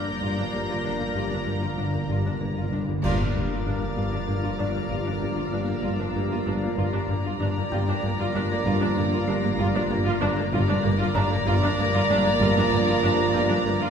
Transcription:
Already playing: synth drone G1, french horn section F3 A#3, synth texture A#4 D5 F5, violin section D5 A#5 G6 A#6, music box F6
0.03 timpani G2, cello section G2, viola section A#3
0.11 timpani G2
0.19 double bass section G1, timpani G2, analog synth bass G2, cello section G2, viola section F4
0.26 timpani G2
0.38 cello section G2, timpani G2, viola section D4
0.53 double bass section G1, analog synth bass G2, cello section G2, timpani G2, viola section A#3
0.63 timpani G2
0.69 cello section G2, timpani G2, viola section F4
0.78 timpani G2
0.84 double bass section G1, analog synth bass G2, cello section G2, timpani G2, viola section D4
1.00 cello section G2, timpani G2, viola section A#3
1.09 timpani G2
1.15 double bass section G1, analog synth bass G2, timpani G2, cello section G2, viola section F4
1.24 timpani G2
1.31 timpani G2, cello section G2, viola section D4
1.39 timpani G2
1.46 double bass section G1, analog synth bass G2, timpani G2, cello section G2, viola section A#3
1.54 timpani G2
1.61 timpani G2, cello section G2, viola section F4
1.69 timpani G2
1.76 double bass section G1, timpani G2, analog synth bass G2, cello section G2, viola section D4
1.84 timpani G2
1.91 timpani G2, viola section A#3
1.95 cello section G2, timpani G2
2.06 double bass section G1, timpani G2, analog synth bass G2, viola section F4
2.10 cello section G2, timpani G2
2.21 timpani G2
2.25 cello section G2, timpani G2, viola section D4
2.36 timpani G2
2.40 double bass section G1, analog synth bass G2, cello section G2, timpani G2, viola section A#3
2.50 timpani G2
2.56 cello section G2, timpani G2, viola section F4
2.66 timpani G2
2.72 double bass section G1, cello section G2, analog synth bass G2, timpani G2, viola section D4
2.81 timpani G2
2.88 cello section G2, timpani G2, viola section A#3
2.96 timpani G2
3.02 synth drone G1, double bass section G1, analog synth bass G2, cello section G2, french horn section F3 A#3, viola section F4, synth texture A#4 D5 F5, violin section D5 A#5 D6 A6, music box G6, concert bass drum, crash
3.20 cello section G2, viola section D4
3.34 double bass section G1, analog synth bass G2, cello section G2, viola section A#3
3.51 cello section G2, viola section F4
3.66 double bass section G1, analog synth bass G2, cello section G2, viola section D4, violin section F6
3.81 cello section G2, viola section A#3
3.96 double bass section G1, analog synth bass G2, cello section G2, viola section F4
4.12 cello section G2, viola section D4
4.27 double bass section G1, cello section G2, analog synth bass G2, viola section A#3
4.43 cello section G2, viola section F4
4.59 double bass section G1, cello section G2, analog synth bass G2, viola section D4, music box D5 D6
4.74 cello section G2, viola section A#3
4.89 double bass section G1, cello section G2, analog synth bass G2, viola section F4
5.06 cello section G2, viola section D4
5.21 double bass section G1, cello section G2, analog synth bass G2, viola section A#3
5.36 cello section G2, viola section F4
5.52 double bass section G1, cello section G2, analog synth bass G2, viola section D4
5.68 cello section G2, viola section A#3
5.75 violin section E6
5.83 double bass section G1, analog synth bass G2, cello section G2, viola section F4
5.99 cello section G2, viola section D4
6.15 double bass section G1, analog synth bass G2, cello section G2, viola section A#3
6.31 cello section G2, viola section F4
6.46 double bass section G1, analog synth bass G2, cello section G2, viola section D4
6.63 cello section G2, viola section A#3
6.77 double bass section G1, synth drone G1, cello section G2, analog synth bass G2, french horn section F3 A#3, viola section F4, synth texture A#4 D5 F5, violin section D5 A#5
6.93 cello section G2, viola section D4
7.08 double bass section G1, cello section G2, analog synth bass G2, viola section A#3
7.25 cello section G2, viola section F4
7.40 double bass section G1, analog synth bass G2, cello section G2, viola section D4
7.56 cello section G2, viola section A#3
7.71 double bass section G1, cello section G2, analog synth bass G2, viola section F4, music box G5 G6
7.87 cello section G2, viola section D4
8.03 double bass section G1, analog synth bass G2, cello section G2, viola section A#3
8.19 cello section G2, viola section F4
8.34 double bass section G1, analog synth bass G2, cello section G2, viola section D4
8.50 cello section G2, viola section A#3
8.65 double bass section G1, cello section G2, analog synth bass G2, viola section F4
8.81 cello section G2, viola section D4
8.96 double bass section G1, analog synth bass G2, cello section G2, viola section A#3
9.12 cello section G2, viola section F4
9.28 double bass section G1, cello section G2, analog synth bass G2, viola section D4, music box C7
9.43 cello section G2, viola section A#3
9.59 double bass section G1, cello section G2, analog synth bass G2, viola section F4
9.75 cello section G2, viola section D4
9.90 double bass section G1, analog synth bass G2, cello section G2, viola section A#3, music box A6
10.05 cello section G2, viola section F4
10.21 double bass section G1, analog synth bass G2, cello section G2, viola section D4
10.37 cello section G2, viola section A#3
10.52 synth drone G1, double bass section G1, analog synth bass G2, cello section G2, french horn section F3 A#3, viola section F4, synth texture A#4 D5 F5, violin section D5 A#5
10.68 cello section G2, viola section D4
10.83 double bass section G1, analog synth bass G2, cello section G2, viola section A#3
10.99 cello section G2, viola section F4
11.15 double bass section G1, cello section G2, analog synth bass G2, viola section D4, music box A#5 A#6
11.31 cello section G2, viola section A#3
11.46 double bass section G1, cello section G2, analog synth bass G2, viola section F4
11.63 cello section G2, viola section D4
11.78 double bass section G1, cello section G2, analog synth bass G2, viola section A#3
11.94 cello section G2, viola section F4
12.09 double bass section G1, analog synth bass G2, cello section G2, viola section D4
12.25 cello section G2, viola section A#3
12.41 double bass section G1, cello section G2, analog synth bass G2, viola section F4, music box A6
12.56 cello section G2, viola section D4
12.72 double bass section G1, cello section G2, analog synth bass G2, viola section A#3
12.88 cello section G2, viola section F4
13.03 double bass section G1, analog synth bass G2, cello section G2, viola section D4
13.18 cello section G2, viola section A#3
13.34 double bass section G1, cello section G2, analog synth bass G2, viola section F4, music box G6
13.49 cello section G2, viola section D4
13.65 double bass section G1, analog synth bass G2, cello section G2, viola section A#3
13.80 cello section G2, viola section F4

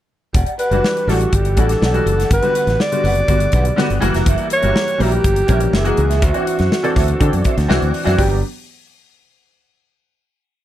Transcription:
0.33 fingered electric bass E1, clean electric guitar G4 D5 F#5, kick, closed hi-hat
0.46 closed hi-hat
0.58 clean electric guitar G4 D5 F#5, alto saxophone B4, closed hi-hat
0.71 fingered electric bass F#1, grand piano E3 G3 D4 F#4, clean electric guitar G4 D5 F#5, closed hi-hat
0.84 snare
0.96 muted clean electric guitar stroke, closed hi-hat
1.07 fingered electric bass A1, grand piano E3 G3 D4 A4, alto saxophone F#4, clean electric guitar G4 D5 F#5, snare, open hi-hat
1.21 muted clean electric guitar stroke, closed hi-hat
1.33 fingered electric bass G1, alto saxophone G4, muted clean electric guitar stroke, kick, closed hi-hat
1.45 muted clean electric guitar stroke, closed hi-hat
1.57 fingered electric bass A1, grand piano E3 G3 D4 F#4, clean electric guitar G4 D5 F#5, alto saxophone A4, kick, closed hi-hat
1.69 muted clean electric guitar stroke, snare, closed hi-hat
1.81 fingered electric bass B1, clean electric guitar G4 D5 F#5, snare
1.93 grand piano E3 G3 D4 F#4, muted clean electric guitar stroke, closed hi-hat
2.06 fingered electric bass F#1, muted clean electric guitar stroke, closed hi-hat
2.18 clean electric guitar G4 D5 F#5, snare, closed hi-hat
2.31 fingered electric bass G1, clean electric guitar G4 B4 F#5, alto saxophone B4, kick, closed hi-hat
2.42 grand piano D3 G3 B3 F#4, closed hi-hat
2.55 clean electric guitar G4 B4 F#5, closed hi-hat
2.67 fingered electric bass A1, clean electric guitar G4 B4 F#5, snare, closed hi-hat
2.80 alto saxophone D5, snare
2.92 grand piano D3 G3 B3 F#4, muted clean electric guitar stroke, closed hi-hat
3.03 fingered electric bass F#1, clean electric guitar G4 B4 F#5, open hi-hat
3.15 muted clean electric guitar stroke, closed hi-hat
3.28 fingered electric bass G1, grand piano D3 G3 B3 F#4, muted clean electric guitar stroke, kick, closed hi-hat
3.40 muted clean electric guitar stroke, closed hi-hat
3.52 fingered electric bass B1, clean electric guitar G4 B4 F#5, kick, closed hi-hat
3.65 muted clean electric guitar stroke, closed hi-hat
3.76 grand piano D3 G3 B3 F#4, clean electric guitar G4 B4 F#5, snare
3.90 fingered electric bass G1, muted clean electric guitar stroke, closed hi-hat
4.00 fingered electric bass F#1, grand piano E3 G3 A#3 F#4, muted clean electric guitar stroke, closed hi-hat
4.14 fingered electric bass F1, clean electric guitar G4 A#4 E5, snare, closed hi-hat
4.26 fingered electric bass F#1, clean electric guitar G4 A#4 E5, kick, closed hi-hat
4.38 closed hi-hat
4.50 clean electric guitar G4 A#4, alto saxophone C#5, closed hi-hat
4.55 clean electric guitar E5
4.62 fingered electric bass G1, grand piano E3 G3 A#3 F#4, clean electric guitar G4 A#4 E5, closed hi-hat
4.76 snare
4.88 muted clean electric guitar stroke, closed hi-hat
4.98 fingered electric bass A#1, grand piano E3 F#3 G3 A#3, clean electric guitar G4 A#4, alto saxophone G4, open hi-hat
5.03 clean electric guitar E5
5.12 muted clean electric guitar stroke, closed hi-hat
5.24 fingered electric bass G1, muted clean electric guitar stroke, kick, closed hi-hat
5.36 muted clean electric guitar stroke, closed hi-hat
5.47 fingered electric bass A#1, grand piano E3 G3 A#3 C#4, clean electric guitar G4 A#4 E5, kick, closed hi-hat
5.60 muted clean electric guitar stroke, closed hi-hat
5.73 fingered electric bass F#1, clean electric guitar G#4 A#4 E5, alto saxophone G#4, snare
5.84 grand piano E3 G#3 A#3 F#4, muted clean electric guitar stroke, closed hi-hat
5.97 fingered electric bass C#2, muted clean electric guitar stroke, closed hi-hat
6.10 clean electric guitar G#4 A#4 E5, snare, closed hi-hat
6.22 fingered electric bass D2, clean electric guitar F#4 C5 E5, alto saxophone F#4, kick, closed hi-hat
6.33 grand piano E3 C4 D4 F#4, closed hi-hat
6.47 clean electric guitar F#4 C5 E5, closed hi-hat
6.58 fingered electric bass F#2, clean electric guitar F#4 C5 E5, snare, closed hi-hat
6.72 snare
6.83 grand piano E3 C4 D4 A4, muted clean electric guitar stroke, closed hi-hat
6.95 fingered electric bass D2, clean electric guitar F#4 C5 E5, kick, snare, open hi-hat
7.08 muted clean electric guitar stroke, closed hi-hat
7.20 fingered electric bass D3, grand piano E3 C4 D4 A4, kick, closed hi-hat
7.33 fingered electric bass F#2, muted clean electric guitar stroke, closed hi-hat
7.44 clean electric guitar F#4 C5 E5, kick, closed hi-hat
7.57 fingered electric bass D2, muted clean electric guitar stroke, snare, closed hi-hat
7.68 fingered electric bass C2, grand piano E3 C4 D4 F#4, clean electric guitar F#4 C5 E5, snare
7.81 fingered electric bass D2, muted clean electric guitar stroke, closed hi-hat
7.93 muted clean electric guitar stroke, open hi-hat
8.04 fingered electric bass F#2, grand piano E3 C4 D4 F#4, clean electric guitar F#4 C5 E5, snare, closed hi-hat
8.17 fingered electric bass G1, grand piano F#3 B3 D4 G4, clean electric guitar F#4 B4 D5, alto saxophone G4, kick, open hi-hat

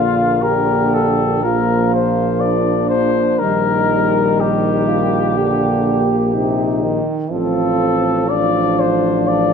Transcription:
Already playing: tuba A#1, trombone D3, trombone section A#3, flugelhorn F4, cornet F4
0.42 trombone D3, flugelhorn G4, cornet A#4
0.94 cornet A4
1.43 trombone F3, trombone section A#3, flugelhorn F4, cornet A#4
1.94 cornet C5
2.40 flugelhorn D4, cornet D5
2.89 cornet C5
3.39 tuba A#1, trombone D#3, trombone section G3, cornet A#4
3.43 flugelhorn D#4
3.90 trombone section G3
4.40 flugelhorn D#4, cornet G4
4.88 flugelhorn F4
5.36 trombone D3, trombone section A#3, flugelhorn G4
6.34 trombone C3, trombone section D#4
6.83 trombone D#3
7.31 tuba A1, trombone F3, trombone section C4, flugelhorn F4, cornet A4
8.28 trombone F3, trombone section D4, flugelhorn F4, cornet D5
8.80 cornet C5
9.26 flugelhorn F4, cornet D5

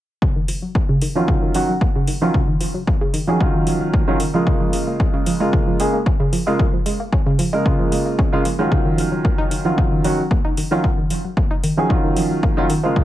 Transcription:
0.22 synth arpeggio sound C#3, kick
0.36 synth arpeggio sound D#3
0.48 synth arpeggio sound F3, open hi-hat
0.62 synth arpeggio sound F#3
0.75 synth arpeggio sound A#3, kick
0.89 synth arpeggio sound C#3
1.02 synth arpeggio sound D#3, open hi-hat
1.15 grand piano D#3 F#3 C#4 F4, synth arpeggio sound F3
1.28 synth arpeggio sound C#3, kick
1.43 synth arpeggio sound D#3
1.54 grand piano D#3 F#3 C#4 F#4, synth arpeggio sound F3, open hi-hat
1.69 synth arpeggio sound F#3
1.81 synth arpeggio sound A#3, kick
1.96 synth arpeggio sound C#3
2.07 synth arpeggio sound D#3, open hi-hat
2.21 grand piano D#3 F#3 C#4 F4, synth arpeggio sound F3
2.34 synth arpeggio sound C#3, kick
2.48 synth arpeggio sound D#3
2.61 synth arpeggio sound F3, open hi-hat
2.74 synth arpeggio sound F#3
2.87 synth arpeggio sound A#3, kick
3.01 synth arpeggio sound C#3
3.13 synth arpeggio sound D#3, open hi-hat
3.27 grand piano D#3 F#3 C#4 G#4, synth arpeggio sound F3
3.40 synth arpeggio sound C#3, grand piano D#3 F#3 C#4 F4, kick
3.54 synth arpeggio sound D#3
3.67 synth arpeggio sound F3, open hi-hat
3.81 synth arpeggio sound F#3
3.93 synth arpeggio sound A#3, kick
4.07 synth arpeggio sound C#3, grand piano D#3 F#3 C#4 F4
4.20 synth arpeggio sound D#3, open hi-hat
4.34 grand piano C#3 G#3 A#3 F4, synth arpeggio sound F3
4.47 synth arpeggio sound C#3, kick
4.61 synth arpeggio sound F3
4.73 synth arpeggio sound G#3, open hi-hat
4.87 synth arpeggio sound A#3
5.00 synth arpeggio sound C#4, kick
5.13 synth arpeggio sound C#3
5.26 synth arpeggio sound F3, open hi-hat
5.40 grand piano C#3 G#3 A#3 F4, synth arpeggio sound G#3
5.53 synth arpeggio sound C#3, kick
5.67 synth arpeggio sound F3
5.79 grand piano C#3 G#3 A#3 G#4, synth arpeggio sound G#3, open hi-hat
5.94 synth arpeggio sound A#3
6.06 synth arpeggio sound C#4, kick
6.20 synth arpeggio sound C#3
6.33 synth arpeggio sound F3, open hi-hat
6.46 grand piano C#3 G#3 A#3 F4, synth arpeggio sound G#3
6.59 synth arpeggio sound C#3, kick
6.73 synth arpeggio sound F3
6.86 synth arpeggio sound G#3, open hi-hat
7.00 synth arpeggio sound A#3
7.13 synth arpeggio sound C#4, kick
7.26 synth arpeggio sound C#3
7.39 synth arpeggio sound F3, open hi-hat
7.53 grand piano C#3 G#3 A#3 A#4, synth arpeggio sound G#3
7.65 grand piano C#3 G#3 A#3 F4, synth arpeggio sound C#3, kick
7.79 synth arpeggio sound F3
7.92 synth arpeggio sound G#3, open hi-hat
8.06 synth arpeggio sound A#3
8.19 synth arpeggio sound C#4, kick
8.32 grand piano C#3 G#3 A#3 F4, synth arpeggio sound C#3
8.45 synth arpeggio sound F3, open hi-hat
8.59 grand piano D#3 F#3 C#4 F4, synth arpeggio sound G#3
8.71 synth arpeggio sound C#3, kick
8.85 synth arpeggio sound D#3
8.98 synth arpeggio sound F3, open hi-hat
9.12 synth arpeggio sound F#3
9.24 synth arpeggio sound A#3, kick
9.38 synth arpeggio sound D#4
9.51 synth arpeggio sound D#3, open hi-hat
9.65 grand piano D#3 F#3 C#4 F4, synth arpeggio sound F3
9.78 synth arpeggio sound C#3, kick
9.92 synth arpeggio sound D#3
10.04 grand piano D#3 F#3 C#4 F#4, synth arpeggio sound F3, open hi-hat
10.18 synth arpeggio sound F#3
10.31 synth arpeggio sound A#3, kick
10.45 synth arpeggio sound D#4
10.57 synth arpeggio sound D#3, open hi-hat
10.71 grand piano D#3 F#3 C#4 F4, synth arpeggio sound F3
10.84 synth arpeggio sound C#3, kick
10.98 synth arpeggio sound D#3
11.10 synth arpeggio sound F3, open hi-hat
11.25 synth arpeggio sound F#3
11.37 synth arpeggio sound A#3, kick
11.51 synth arpeggio sound D#4
11.64 synth arpeggio sound D#3, open hi-hat
11.77 grand piano D#3 F#3 C#4 G#4, synth arpeggio sound F3
11.89 synth arpeggio sound C#3, grand piano D#3 F#3 C#4 F4, kick
12.04 synth arpeggio sound D#3
12.16 synth arpeggio sound F3, open hi-hat
12.31 synth arpeggio sound F#3
12.43 synth arpeggio sound A#3, kick
12.57 grand piano D#3 F#3 C#4 F4, synth arpeggio sound D#4
12.70 synth arpeggio sound D#3, open hi-hat
12.83 grand piano C#3 G#3 A#3 F4, synth arpeggio sound F3
12.96 synth arpeggio sound C#3, kick

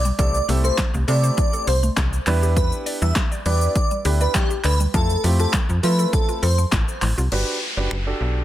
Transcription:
Already playing: fm bass B1
0.05 synth arpeggio sound G3, shaker
0.19 fm bass C2, grand piano A3 C4 E4 G4 A4, synth arpeggio sound A4, digital synth lead D5, kick, closed hi-hat, shaker
0.34 shaker
0.48 fm bass C2, synth arpeggio sound A3, grand piano A3 C4 E4 G4 A4, open hi-hat, shaker
0.64 synth arpeggio sound A4, digital synth lead C5, shaker
0.78 synth arpeggio sound C5, kick, snare, clap, closed hi-hat, shaker
0.94 fm bass C2, synth arpeggio sound A3, shaker
1.08 fm bass C3, grand piano A3 C4 E4 G4 A4, synth arpeggio sound A4, digital synth lead D5, open hi-hat, shaker
1.23 synth arpeggio sound C5, shaker
1.37 synth arpeggio sound A3, digital synth lead D5, kick, closed hi-hat, shaker
1.53 synth arpeggio sound A4, shaker
1.67 fm bass C2, digital synth lead C5, synth arpeggio sound C5, open hi-hat, shaker
1.83 synth arpeggio sound A3, shaker
1.97 fm bass C2, synth arpeggio sound A4, kick, snare, clap, closed hi-hat, shaker
2.13 shaker
2.27 fm bass E2, synth arpeggio sound G3, grand piano B3 D4 E4 G4 B4, clap, open hi-hat, shaker
2.43 synth arpeggio sound G4, shaker
2.56 synth arpeggio sound G3, digital synth lead B4, kick, closed hi-hat, shaker
2.72 shaker
2.86 synth arpeggio sound D5, open hi-hat, shaker
3.02 fm bass E2, synth arpeggio sound G3, digital synth lead E5, shaker
3.15 synth arpeggio sound G4, kick, snare, clap, closed hi-hat, shaker
3.32 synth arpeggio sound D5, shaker
3.45 fm bass E2, synth arpeggio sound G3, grand piano B3 D4 E4 G4 B4, digital synth lead D5, open hi-hat, shaker
3.61 shaker
3.75 digital synth lead D5, kick, closed hi-hat, shaker
3.91 synth arpeggio sound G3, shaker
4.05 fm bass D2, grand piano B3 D4 E4 G4 B4, synth arpeggio sound G4, open hi-hat, shaker
4.21 digital synth lead B4, synth arpeggio sound D5, shaker
4.34 synth arpeggio sound G3, digital synth lead G4, kick, snare, clap, closed hi-hat, shaker
4.50 synth arpeggio sound G4, shaker
4.64 fm bass D2, digital synth lead B4, synth arpeggio sound D5, clap, open hi-hat, shaker
4.80 synth arpeggio sound G3, shaker
4.94 fm bass F2, grand piano A3 C4 E4 F4 A4, synth arpeggio sound F4, digital synth lead A4, kick, closed hi-hat, shaker
5.10 shaker
5.24 fm bass F2, synth arpeggio sound F3, grand piano A3 C4 E4 F4 G4, open hi-hat, shaker
5.39 synth arpeggio sound F4, digital synth lead A4, shaker
5.53 synth arpeggio sound A4, kick, snare, clap, closed hi-hat, shaker
5.69 fm bass F2, synth arpeggio sound F3, shaker
5.83 fm bass F3, grand piano A3 C4 E4 F4 A4, synth arpeggio sound F4, digital synth lead B4, open hi-hat, shaker
5.99 synth arpeggio sound A4, shaker
6.13 synth arpeggio sound F3, digital synth lead A4, kick, closed hi-hat, shaker
6.29 synth arpeggio sound F4, shaker
6.43 fm bass F2, synth arpeggio sound A4, digital synth lead C5, open hi-hat, shaker
6.58 synth arpeggio sound F3, shaker
6.72 fm bass A1, synth arpeggio sound F4, kick, snare, clap, closed hi-hat, shaker
6.88 shaker
7.02 fm bass A1, synth arpeggio sound F3, clap, open hi-hat, shaker
7.18 fm bass C2, synth arpeggio sound F4, shaker
7.32 fm bass G1, grand piano D4 F#4 G4 B4, crash, downlifter
7.77 fm bass F#1, grand piano D4 F#4 G4 B4
7.91 fm bass F#1, finger snap
8.07 grand piano D4 F#4 G4 A4
8.21 fm bass B1

